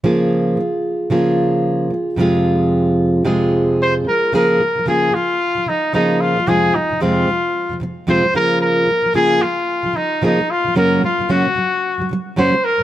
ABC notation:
X:1
M:4/4
L:1/16
Q:"Swing 16ths" 1/4=112
K:Db
V:1 name="Trumpet"
z16 | z12 c2 B2 | B4 A2 F4 E2 E2 F2 | A2 E2 F6 z2 c2 B2 |
B4 A2 F4 E2 E2 F2 | B2 F2 G6 z2 c2 B2 |]
V:2 name="Steel-string acoustic guitar" clef=bass
[D,F,B,FA]4 [D,F,]2 z2 [D,F,B,FA]6 [D,F,]2 | [F,,C,F,A,FA]8 [F,,C,F,A,FA]6 [D,F,]2 | [D,F,B,FA]2 D, [D,F,] [D,F,B,FA]2 [D,F,]2 z [D,F,] [D,F,]2 [D,F,B,FA]3 [D,F,] | [F,,C,F,A,CF]2 [F,,C,F,] [F,,C,F,] [F,,C,F,A,CF]2 [F,,C,]2 z [F,,C,F,] [F,,C,F,]2 [F,,C,F,A,CF] [F,,C,F,] [D,F,B,FA]2- |
[D,F,B,FA]2 D, [D,F,] [D,F,B,FA]2 [D,F,]2 z [D,F,] [D,F,]2 [D,F,B,FA] D,2 [D,F,] | [G,,D,G,B,DG]2 [G,,D,] [G,,D,G,] [G,,D,G,B,DG] [G,,D,] [G,,D,G,]2 z [G,,D,G,] [G,,D,G,]2 [G,,D,G,B,DG] [G,,D,G,]2 G,, |]